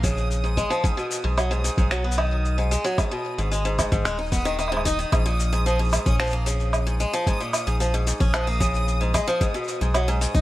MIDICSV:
0, 0, Header, 1, 5, 480
1, 0, Start_track
1, 0, Tempo, 535714
1, 753, Time_signature, 4, 2, 24, 8
1, 9327, End_track
2, 0, Start_track
2, 0, Title_t, "Synth texture"
2, 0, Program_c, 0, 99
2, 0, Note_on_c, 0, 87, 84
2, 9327, Note_off_c, 0, 87, 0
2, 9327, End_track
3, 0, Start_track
3, 0, Title_t, "Steel-string acoustic guitar"
3, 0, Program_c, 1, 25
3, 32, Note_on_c, 1, 49, 76
3, 380, Note_off_c, 1, 49, 0
3, 392, Note_on_c, 1, 44, 65
3, 500, Note_off_c, 1, 44, 0
3, 512, Note_on_c, 1, 56, 81
3, 620, Note_off_c, 1, 56, 0
3, 630, Note_on_c, 1, 53, 100
3, 746, Note_off_c, 1, 53, 0
3, 750, Note_on_c, 1, 44, 79
3, 859, Note_off_c, 1, 44, 0
3, 871, Note_on_c, 1, 47, 73
3, 1100, Note_off_c, 1, 47, 0
3, 1110, Note_on_c, 1, 44, 74
3, 1226, Note_off_c, 1, 44, 0
3, 1231, Note_on_c, 1, 54, 67
3, 1340, Note_off_c, 1, 54, 0
3, 1352, Note_on_c, 1, 44, 78
3, 1460, Note_off_c, 1, 44, 0
3, 1471, Note_on_c, 1, 44, 69
3, 1580, Note_off_c, 1, 44, 0
3, 1593, Note_on_c, 1, 44, 71
3, 1701, Note_off_c, 1, 44, 0
3, 1711, Note_on_c, 1, 54, 88
3, 1820, Note_off_c, 1, 54, 0
3, 1830, Note_on_c, 1, 59, 62
3, 1940, Note_off_c, 1, 59, 0
3, 1951, Note_on_c, 1, 51, 73
3, 2300, Note_off_c, 1, 51, 0
3, 2311, Note_on_c, 1, 44, 65
3, 2420, Note_off_c, 1, 44, 0
3, 2430, Note_on_c, 1, 56, 79
3, 2540, Note_off_c, 1, 56, 0
3, 2549, Note_on_c, 1, 54, 94
3, 2665, Note_off_c, 1, 54, 0
3, 2670, Note_on_c, 1, 44, 71
3, 2780, Note_off_c, 1, 44, 0
3, 2791, Note_on_c, 1, 47, 70
3, 3020, Note_off_c, 1, 47, 0
3, 3032, Note_on_c, 1, 44, 69
3, 3147, Note_off_c, 1, 44, 0
3, 3150, Note_on_c, 1, 56, 70
3, 3259, Note_off_c, 1, 56, 0
3, 3270, Note_on_c, 1, 44, 78
3, 3380, Note_off_c, 1, 44, 0
3, 3392, Note_on_c, 1, 44, 67
3, 3500, Note_off_c, 1, 44, 0
3, 3511, Note_on_c, 1, 44, 73
3, 3620, Note_off_c, 1, 44, 0
3, 3630, Note_on_c, 1, 56, 83
3, 3740, Note_off_c, 1, 56, 0
3, 3750, Note_on_c, 1, 63, 70
3, 3860, Note_off_c, 1, 63, 0
3, 3869, Note_on_c, 1, 59, 69
3, 3979, Note_off_c, 1, 59, 0
3, 3990, Note_on_c, 1, 51, 96
3, 4099, Note_off_c, 1, 51, 0
3, 4109, Note_on_c, 1, 51, 79
3, 4219, Note_off_c, 1, 51, 0
3, 4228, Note_on_c, 1, 44, 89
3, 4345, Note_off_c, 1, 44, 0
3, 4349, Note_on_c, 1, 63, 97
3, 4459, Note_off_c, 1, 63, 0
3, 4470, Note_on_c, 1, 51, 68
3, 4579, Note_off_c, 1, 51, 0
3, 4590, Note_on_c, 1, 44, 78
3, 4700, Note_off_c, 1, 44, 0
3, 4709, Note_on_c, 1, 46, 68
3, 4939, Note_off_c, 1, 46, 0
3, 4951, Note_on_c, 1, 44, 73
3, 5066, Note_off_c, 1, 44, 0
3, 5071, Note_on_c, 1, 53, 68
3, 5180, Note_off_c, 1, 53, 0
3, 5190, Note_on_c, 1, 44, 72
3, 5300, Note_off_c, 1, 44, 0
3, 5311, Note_on_c, 1, 44, 70
3, 5420, Note_off_c, 1, 44, 0
3, 5431, Note_on_c, 1, 61, 66
3, 5540, Note_off_c, 1, 61, 0
3, 5551, Note_on_c, 1, 53, 89
3, 5660, Note_off_c, 1, 53, 0
3, 5671, Note_on_c, 1, 58, 69
3, 5780, Note_off_c, 1, 58, 0
3, 5790, Note_on_c, 1, 49, 73
3, 6139, Note_off_c, 1, 49, 0
3, 6152, Note_on_c, 1, 44, 68
3, 6261, Note_off_c, 1, 44, 0
3, 6273, Note_on_c, 1, 56, 79
3, 6381, Note_off_c, 1, 56, 0
3, 6393, Note_on_c, 1, 53, 102
3, 6507, Note_off_c, 1, 53, 0
3, 6514, Note_on_c, 1, 44, 75
3, 6622, Note_off_c, 1, 44, 0
3, 6634, Note_on_c, 1, 46, 72
3, 6862, Note_off_c, 1, 46, 0
3, 6872, Note_on_c, 1, 44, 73
3, 6986, Note_off_c, 1, 44, 0
3, 6991, Note_on_c, 1, 53, 70
3, 7100, Note_off_c, 1, 53, 0
3, 7113, Note_on_c, 1, 44, 76
3, 7221, Note_off_c, 1, 44, 0
3, 7231, Note_on_c, 1, 44, 71
3, 7340, Note_off_c, 1, 44, 0
3, 7350, Note_on_c, 1, 61, 72
3, 7460, Note_off_c, 1, 61, 0
3, 7471, Note_on_c, 1, 53, 84
3, 7580, Note_off_c, 1, 53, 0
3, 7591, Note_on_c, 1, 58, 68
3, 7700, Note_off_c, 1, 58, 0
3, 7709, Note_on_c, 1, 49, 71
3, 8059, Note_off_c, 1, 49, 0
3, 8071, Note_on_c, 1, 44, 67
3, 8180, Note_off_c, 1, 44, 0
3, 8190, Note_on_c, 1, 56, 78
3, 8300, Note_off_c, 1, 56, 0
3, 8310, Note_on_c, 1, 53, 101
3, 8426, Note_off_c, 1, 53, 0
3, 8430, Note_on_c, 1, 44, 80
3, 8540, Note_off_c, 1, 44, 0
3, 8550, Note_on_c, 1, 47, 68
3, 8780, Note_off_c, 1, 47, 0
3, 8792, Note_on_c, 1, 44, 72
3, 8906, Note_off_c, 1, 44, 0
3, 8911, Note_on_c, 1, 54, 77
3, 9020, Note_off_c, 1, 54, 0
3, 9032, Note_on_c, 1, 44, 82
3, 9140, Note_off_c, 1, 44, 0
3, 9150, Note_on_c, 1, 44, 74
3, 9260, Note_off_c, 1, 44, 0
3, 9270, Note_on_c, 1, 63, 71
3, 9327, Note_off_c, 1, 63, 0
3, 9327, End_track
4, 0, Start_track
4, 0, Title_t, "Analog synth bass"
4, 0, Program_c, 2, 38
4, 0, Note_on_c, 2, 34, 81
4, 561, Note_off_c, 2, 34, 0
4, 1112, Note_on_c, 2, 35, 82
4, 1521, Note_off_c, 2, 35, 0
4, 1590, Note_on_c, 2, 35, 80
4, 2480, Note_off_c, 2, 35, 0
4, 3030, Note_on_c, 2, 32, 74
4, 3440, Note_off_c, 2, 32, 0
4, 3511, Note_on_c, 2, 32, 84
4, 3625, Note_off_c, 2, 32, 0
4, 3630, Note_on_c, 2, 27, 90
4, 4520, Note_off_c, 2, 27, 0
4, 4591, Note_on_c, 2, 34, 100
4, 5361, Note_off_c, 2, 34, 0
4, 5430, Note_on_c, 2, 34, 78
4, 6320, Note_off_c, 2, 34, 0
4, 6870, Note_on_c, 2, 34, 75
4, 7280, Note_off_c, 2, 34, 0
4, 7350, Note_on_c, 2, 34, 84
4, 8240, Note_off_c, 2, 34, 0
4, 8791, Note_on_c, 2, 35, 79
4, 9201, Note_off_c, 2, 35, 0
4, 9270, Note_on_c, 2, 35, 84
4, 9327, Note_off_c, 2, 35, 0
4, 9327, End_track
5, 0, Start_track
5, 0, Title_t, "Drums"
5, 32, Note_on_c, 9, 36, 106
5, 33, Note_on_c, 9, 82, 74
5, 121, Note_off_c, 9, 36, 0
5, 122, Note_off_c, 9, 82, 0
5, 154, Note_on_c, 9, 82, 33
5, 244, Note_off_c, 9, 82, 0
5, 276, Note_on_c, 9, 82, 46
5, 366, Note_off_c, 9, 82, 0
5, 395, Note_on_c, 9, 82, 20
5, 485, Note_off_c, 9, 82, 0
5, 511, Note_on_c, 9, 36, 56
5, 516, Note_on_c, 9, 82, 75
5, 601, Note_off_c, 9, 36, 0
5, 605, Note_off_c, 9, 82, 0
5, 636, Note_on_c, 9, 82, 29
5, 726, Note_off_c, 9, 82, 0
5, 752, Note_on_c, 9, 36, 114
5, 756, Note_on_c, 9, 82, 41
5, 841, Note_off_c, 9, 36, 0
5, 846, Note_off_c, 9, 82, 0
5, 877, Note_on_c, 9, 82, 22
5, 967, Note_off_c, 9, 82, 0
5, 996, Note_on_c, 9, 82, 77
5, 1085, Note_off_c, 9, 82, 0
5, 1233, Note_on_c, 9, 77, 76
5, 1236, Note_on_c, 9, 82, 41
5, 1323, Note_off_c, 9, 77, 0
5, 1325, Note_off_c, 9, 82, 0
5, 1354, Note_on_c, 9, 82, 23
5, 1444, Note_off_c, 9, 82, 0
5, 1475, Note_on_c, 9, 82, 80
5, 1564, Note_off_c, 9, 82, 0
5, 1591, Note_on_c, 9, 36, 107
5, 1595, Note_on_c, 9, 82, 30
5, 1681, Note_off_c, 9, 36, 0
5, 1684, Note_off_c, 9, 82, 0
5, 1712, Note_on_c, 9, 26, 76
5, 1715, Note_on_c, 9, 82, 44
5, 1801, Note_off_c, 9, 26, 0
5, 1804, Note_off_c, 9, 82, 0
5, 1895, Note_on_c, 9, 82, 76
5, 1953, Note_on_c, 9, 77, 78
5, 1985, Note_off_c, 9, 82, 0
5, 2043, Note_off_c, 9, 77, 0
5, 2196, Note_on_c, 9, 82, 45
5, 2286, Note_off_c, 9, 82, 0
5, 2318, Note_on_c, 9, 82, 22
5, 2407, Note_off_c, 9, 82, 0
5, 2434, Note_on_c, 9, 82, 80
5, 2523, Note_off_c, 9, 82, 0
5, 2555, Note_on_c, 9, 82, 33
5, 2644, Note_off_c, 9, 82, 0
5, 2671, Note_on_c, 9, 36, 115
5, 2672, Note_on_c, 9, 77, 65
5, 2675, Note_on_c, 9, 82, 45
5, 2761, Note_off_c, 9, 36, 0
5, 2761, Note_off_c, 9, 77, 0
5, 2764, Note_off_c, 9, 82, 0
5, 3034, Note_on_c, 9, 82, 30
5, 3123, Note_off_c, 9, 82, 0
5, 3154, Note_on_c, 9, 82, 43
5, 3244, Note_off_c, 9, 82, 0
5, 3274, Note_on_c, 9, 82, 23
5, 3364, Note_off_c, 9, 82, 0
5, 3392, Note_on_c, 9, 36, 56
5, 3392, Note_on_c, 9, 77, 71
5, 3395, Note_on_c, 9, 82, 78
5, 3481, Note_off_c, 9, 36, 0
5, 3482, Note_off_c, 9, 77, 0
5, 3485, Note_off_c, 9, 82, 0
5, 3511, Note_on_c, 9, 36, 101
5, 3513, Note_on_c, 9, 82, 31
5, 3601, Note_off_c, 9, 36, 0
5, 3603, Note_off_c, 9, 82, 0
5, 3631, Note_on_c, 9, 26, 74
5, 3634, Note_on_c, 9, 82, 44
5, 3721, Note_off_c, 9, 26, 0
5, 3724, Note_off_c, 9, 82, 0
5, 3754, Note_on_c, 9, 82, 10
5, 3816, Note_off_c, 9, 82, 0
5, 3816, Note_on_c, 9, 82, 13
5, 3871, Note_on_c, 9, 36, 111
5, 3875, Note_off_c, 9, 82, 0
5, 3875, Note_on_c, 9, 82, 75
5, 3936, Note_off_c, 9, 82, 0
5, 3936, Note_on_c, 9, 82, 18
5, 3961, Note_off_c, 9, 36, 0
5, 3994, Note_off_c, 9, 82, 0
5, 3994, Note_on_c, 9, 82, 31
5, 4084, Note_off_c, 9, 82, 0
5, 4112, Note_on_c, 9, 77, 31
5, 4115, Note_on_c, 9, 82, 46
5, 4192, Note_off_c, 9, 77, 0
5, 4192, Note_on_c, 9, 77, 44
5, 4205, Note_off_c, 9, 82, 0
5, 4272, Note_off_c, 9, 77, 0
5, 4272, Note_on_c, 9, 77, 52
5, 4351, Note_on_c, 9, 36, 54
5, 4354, Note_on_c, 9, 82, 82
5, 4361, Note_off_c, 9, 77, 0
5, 4440, Note_off_c, 9, 36, 0
5, 4443, Note_off_c, 9, 82, 0
5, 4476, Note_on_c, 9, 82, 30
5, 4565, Note_off_c, 9, 82, 0
5, 4591, Note_on_c, 9, 36, 117
5, 4593, Note_on_c, 9, 77, 71
5, 4596, Note_on_c, 9, 82, 38
5, 4681, Note_off_c, 9, 36, 0
5, 4682, Note_off_c, 9, 77, 0
5, 4685, Note_off_c, 9, 82, 0
5, 4717, Note_on_c, 9, 82, 21
5, 4806, Note_off_c, 9, 82, 0
5, 4834, Note_on_c, 9, 82, 72
5, 4924, Note_off_c, 9, 82, 0
5, 4955, Note_on_c, 9, 82, 31
5, 5045, Note_off_c, 9, 82, 0
5, 5076, Note_on_c, 9, 82, 41
5, 5165, Note_off_c, 9, 82, 0
5, 5197, Note_on_c, 9, 82, 10
5, 5216, Note_off_c, 9, 82, 0
5, 5216, Note_on_c, 9, 82, 11
5, 5236, Note_off_c, 9, 82, 0
5, 5236, Note_on_c, 9, 82, 13
5, 5254, Note_off_c, 9, 82, 0
5, 5254, Note_on_c, 9, 82, 14
5, 5275, Note_off_c, 9, 82, 0
5, 5275, Note_on_c, 9, 82, 16
5, 5294, Note_off_c, 9, 82, 0
5, 5294, Note_on_c, 9, 82, 19
5, 5310, Note_on_c, 9, 77, 77
5, 5313, Note_off_c, 9, 82, 0
5, 5313, Note_on_c, 9, 82, 78
5, 5400, Note_off_c, 9, 77, 0
5, 5403, Note_off_c, 9, 82, 0
5, 5431, Note_on_c, 9, 36, 99
5, 5434, Note_on_c, 9, 82, 33
5, 5520, Note_off_c, 9, 36, 0
5, 5523, Note_off_c, 9, 82, 0
5, 5552, Note_on_c, 9, 26, 70
5, 5554, Note_on_c, 9, 82, 20
5, 5586, Note_off_c, 9, 82, 0
5, 5586, Note_on_c, 9, 82, 24
5, 5615, Note_off_c, 9, 82, 0
5, 5615, Note_on_c, 9, 82, 29
5, 5641, Note_off_c, 9, 26, 0
5, 5644, Note_off_c, 9, 82, 0
5, 5644, Note_on_c, 9, 82, 35
5, 5674, Note_off_c, 9, 82, 0
5, 5674, Note_on_c, 9, 82, 23
5, 5763, Note_off_c, 9, 82, 0
5, 5793, Note_on_c, 9, 82, 80
5, 5883, Note_off_c, 9, 82, 0
5, 5914, Note_on_c, 9, 82, 29
5, 6003, Note_off_c, 9, 82, 0
5, 6030, Note_on_c, 9, 77, 73
5, 6033, Note_on_c, 9, 82, 44
5, 6120, Note_off_c, 9, 77, 0
5, 6122, Note_off_c, 9, 82, 0
5, 6154, Note_on_c, 9, 82, 21
5, 6244, Note_off_c, 9, 82, 0
5, 6273, Note_on_c, 9, 82, 72
5, 6362, Note_off_c, 9, 82, 0
5, 6394, Note_on_c, 9, 82, 32
5, 6483, Note_off_c, 9, 82, 0
5, 6511, Note_on_c, 9, 36, 99
5, 6512, Note_on_c, 9, 82, 41
5, 6600, Note_off_c, 9, 36, 0
5, 6602, Note_off_c, 9, 82, 0
5, 6633, Note_on_c, 9, 82, 19
5, 6723, Note_off_c, 9, 82, 0
5, 6749, Note_on_c, 9, 77, 72
5, 6752, Note_on_c, 9, 82, 78
5, 6838, Note_off_c, 9, 77, 0
5, 6841, Note_off_c, 9, 82, 0
5, 6873, Note_on_c, 9, 82, 30
5, 6962, Note_off_c, 9, 82, 0
5, 6993, Note_on_c, 9, 82, 43
5, 7083, Note_off_c, 9, 82, 0
5, 7112, Note_on_c, 9, 82, 21
5, 7202, Note_off_c, 9, 82, 0
5, 7232, Note_on_c, 9, 82, 77
5, 7321, Note_off_c, 9, 82, 0
5, 7351, Note_on_c, 9, 36, 100
5, 7354, Note_on_c, 9, 82, 30
5, 7440, Note_off_c, 9, 36, 0
5, 7444, Note_off_c, 9, 82, 0
5, 7470, Note_on_c, 9, 26, 73
5, 7470, Note_on_c, 9, 77, 77
5, 7473, Note_on_c, 9, 82, 41
5, 7560, Note_off_c, 9, 26, 0
5, 7560, Note_off_c, 9, 77, 0
5, 7563, Note_off_c, 9, 82, 0
5, 7596, Note_on_c, 9, 82, 18
5, 7634, Note_off_c, 9, 82, 0
5, 7634, Note_on_c, 9, 82, 16
5, 7676, Note_off_c, 9, 82, 0
5, 7676, Note_on_c, 9, 82, 14
5, 7710, Note_on_c, 9, 36, 101
5, 7716, Note_off_c, 9, 82, 0
5, 7716, Note_on_c, 9, 82, 73
5, 7756, Note_off_c, 9, 82, 0
5, 7756, Note_on_c, 9, 82, 9
5, 7797, Note_off_c, 9, 82, 0
5, 7797, Note_on_c, 9, 82, 7
5, 7800, Note_off_c, 9, 36, 0
5, 7837, Note_off_c, 9, 82, 0
5, 7837, Note_on_c, 9, 82, 31
5, 7926, Note_off_c, 9, 82, 0
5, 7955, Note_on_c, 9, 82, 44
5, 8045, Note_off_c, 9, 82, 0
5, 8076, Note_on_c, 9, 82, 20
5, 8166, Note_off_c, 9, 82, 0
5, 8190, Note_on_c, 9, 36, 51
5, 8192, Note_on_c, 9, 77, 76
5, 8195, Note_on_c, 9, 82, 75
5, 8280, Note_off_c, 9, 36, 0
5, 8282, Note_off_c, 9, 77, 0
5, 8284, Note_off_c, 9, 82, 0
5, 8315, Note_on_c, 9, 82, 30
5, 8405, Note_off_c, 9, 82, 0
5, 8430, Note_on_c, 9, 36, 108
5, 8433, Note_on_c, 9, 82, 42
5, 8519, Note_off_c, 9, 36, 0
5, 8522, Note_off_c, 9, 82, 0
5, 8554, Note_on_c, 9, 82, 19
5, 8634, Note_off_c, 9, 82, 0
5, 8634, Note_on_c, 9, 82, 17
5, 8674, Note_off_c, 9, 82, 0
5, 8674, Note_on_c, 9, 82, 74
5, 8714, Note_off_c, 9, 82, 0
5, 8714, Note_on_c, 9, 82, 13
5, 8793, Note_off_c, 9, 82, 0
5, 8793, Note_on_c, 9, 82, 26
5, 8882, Note_off_c, 9, 82, 0
5, 8909, Note_on_c, 9, 77, 78
5, 8912, Note_on_c, 9, 82, 41
5, 8998, Note_off_c, 9, 77, 0
5, 9001, Note_off_c, 9, 82, 0
5, 9032, Note_on_c, 9, 82, 21
5, 9121, Note_off_c, 9, 82, 0
5, 9154, Note_on_c, 9, 82, 72
5, 9244, Note_off_c, 9, 82, 0
5, 9270, Note_on_c, 9, 36, 99
5, 9272, Note_on_c, 9, 82, 30
5, 9327, Note_off_c, 9, 36, 0
5, 9327, Note_off_c, 9, 82, 0
5, 9327, End_track
0, 0, End_of_file